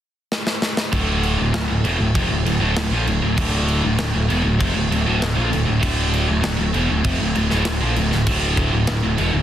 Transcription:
0.32 snare
0.47 snare
0.62 snare
0.77 snare
0.92 picked electric bass D1, distorted electric guitar D2 A2 D3, kick, crash
1.23 crash
1.38 picked electric bass D1, distorted electric guitar D2 A2
1.53 picked electric bass D1, distorted electric guitar D2 A2, snare, crash
1.68 picked electric bass D1, distorted electric guitar D2 A2
1.84 picked electric bass E1, distorted electric guitar E2 B2, crash
1.98 picked electric bass D1, distorted electric guitar D2 A2
2.14 picked electric bass F1, distorted electric guitar F2 C3, kick, crash
2.30 picked electric bass D1, distorted electric guitar D2 A2
2.45 picked electric bass D1, distorted electric guitar D2 A2, crash
2.60 picked electric bass D1, distorted electric guitar D2 A2
2.76 picked electric bass D1, distorted electric guitar D2 A2, snare, crash
2.91 picked electric bass A#1, distorted electric guitar A#2 F3
3.07 picked electric bass D1, distorted electric guitar D2 A2, crash
3.22 picked electric bass D1, distorted electric guitar D2 A2
3.37 picked electric bass D1, distorted electric guitar D2 A2 D3, kick, crash
3.68 crash
3.84 picked electric bass D1, distorted electric guitar D2 A2
3.99 picked electric bass D1, distorted electric guitar D2 A2, snare, crash
4.14 picked electric bass D1, distorted electric guitar D2 A2
4.29 picked electric bass E1, distorted electric guitar E2 B2, crash
4.44 picked electric bass D1, distorted electric guitar D2 A2
4.59 picked electric bass F1, distorted electric guitar F2 C3, kick, crash
4.75 picked electric bass D1, distorted electric guitar D2 A2
4.91 picked electric bass D1, distorted electric guitar D2 A2, crash
5.06 picked electric bass D1, distorted electric guitar D2 A2
5.22 picked electric bass D1, distorted electric guitar D2 A2, snare, crash
5.35 picked electric bass A#1, distorted electric guitar A#2 F3
5.51 picked electric bass D1, distorted electric guitar D2 A2, crash
5.67 picked electric bass D1, distorted electric guitar D2 A2
5.80 picked electric bass D1, distorted electric guitar D2 A2 D3, kick, crash
6.14 crash
6.28 picked electric bass D1, distorted electric guitar D2 A2
6.42 picked electric bass D1, distorted electric guitar D2 A2, snare, crash
6.57 picked electric bass D1, distorted electric guitar D2 A2
6.74 picked electric bass E1, distorted electric guitar E2 B2, crash
6.90 picked electric bass D1, distorted electric guitar D2 A2
7.04 picked electric bass F1, distorted electric guitar F2 C3, kick, crash
7.20 picked electric bass D1, distorted electric guitar D2 A2
7.35 picked electric bass D1, distorted electric guitar D2 A2, crash
7.51 picked electric bass D1, distorted electric guitar D2 A2, snare
7.65 picked electric bass D1, distorted electric guitar D2 A2, snare, crash
7.81 picked electric bass A#1, distorted electric guitar A#2 F3
7.96 picked electric bass D1, distorted electric guitar D2 A2, crash
8.11 picked electric bass D1, distorted electric guitar D2 A2, snare
8.26 picked electric bass D1, distorted electric guitar D2 A2 D3, kick, crash
8.57 kick, crash
8.73 picked electric bass D1, distorted electric guitar D2 A2
8.87 picked electric bass D1, distorted electric guitar D2 A2, snare, crash
9.03 picked electric bass D1, distorted electric guitar D2 A2
9.18 picked electric bass E1, distorted electric guitar E2 B2, crash
9.33 picked electric bass D1, distorted electric guitar D2 A2

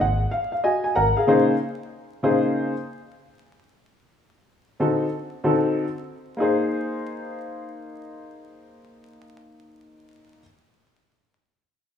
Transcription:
0.00 fretless electric bass G#1, grand piano F#5
0.31 grand piano F5
0.52 grand piano F5
0.64 grand piano F#4 D#5 G#5
0.84 grand piano G#5
0.95 fretless electric bass G#1, grand piano A#4 F#5 A#5
1.17 grand piano G#4 F5
1.27 grand piano C#3 A#3 D#4 G#4 C5
2.23 grand piano C#3 A#3 D#4 G#4 C5
4.80 grand piano D3 C4 D#4 F#4 A4
5.44 grand piano D3 C4 D#4 F#4 A4
6.37 grand piano A#3 D#4 G#4
6.42 grand piano C5

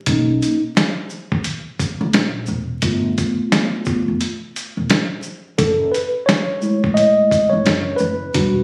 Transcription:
0.06 upright bass B1, tine electric piano A#3 C#4 D#4, kick, closed hi-hat
0.42 closed hi-hat, shaker
0.77 snare, closed hi-hat
1.10 shaker
1.32 upright bass D#2, kick
1.44 closed hi-hat
1.79 kick, closed hi-hat, shaker
2.01 upright bass C#2
2.13 upright bass A#1, snare, closed hi-hat
2.46 upright bass E1, shaker
2.82 upright bass G1, tine electric piano A3 B3 F4, kick, closed hi-hat
3.18 kick, closed hi-hat, shaker
3.52 snare, closed hi-hat
3.85 tine electric piano A3 B3 F4, kick, shaker
4.08 upright bass F1
4.21 closed hi-hat
4.56 closed hi-hat, shaker
4.77 upright bass E1
4.90 snare, closed hi-hat
5.23 shaker
5.58 upright bass F#1, tine electric piano A4, kick, closed hi-hat
5.92 tine electric piano B4, closed hi-hat, shaker
6.26 tine electric piano C#5, snare, closed hi-hat
6.62 tine electric piano G#3 A3 E4, shaker
6.84 upright bass A1, kick
6.94 tine electric piano D#5, closed hi-hat
7.31 kick, closed hi-hat, shaker
7.50 upright bass G#1, tine electric piano C#5
7.65 upright bass F#1, snare, closed hi-hat
7.96 upright bass F#1, tine electric piano B4, shaker
8.34 upright bass E1, tine electric piano G3 D4 F#4, kick, closed hi-hat

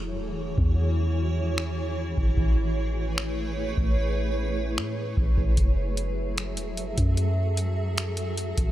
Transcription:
Already playing: 808-style bass E1, ambient pad E3 E4 F#4 G#4 C#5
0.17 808-style bass D#1
0.37 808-style bass E1
0.58 808-style bass E2, kick
1.58 finger snap
2.18 808-style bass G#1, kick
2.37 808-style bass A1, ambient pad A3 B4 C#5, kick
3.18 finger snap
3.78 808-style bass A1, kick
4.77 808-style bass A2, finger snap
5.17 808-style bass A1, kick
5.38 808-style bass A1, kick
5.57 808-style bass F#1, ambient pad F#3 F#4 A4 E5, kick, closed hi-hat
5.97 closed hi-hat
6.38 finger snap, closed hi-hat
6.57 808-style bass E1, closed hi-hat
6.77 808-style bass F#1, closed hi-hat
6.98 808-style bass F#2, kick, closed hi-hat
7.17 closed hi-hat
7.57 closed hi-hat
7.98 finger snap, closed hi-hat
8.17 closed hi-hat
8.37 closed hi-hat
8.58 808-style bass A1, kick, closed hi-hat

